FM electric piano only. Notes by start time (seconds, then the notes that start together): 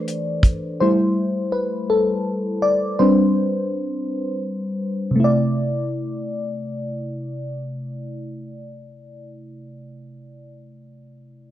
Already playing: E3 A3 D4 C5 D5
0.80 G3 A3 E4 C5
1.52 B4
1.90 A4
2.62 D5
2.99 G3 C4 D4 B4 C5
5.11 C3
5.16 A3
5.20 E4
5.24 D5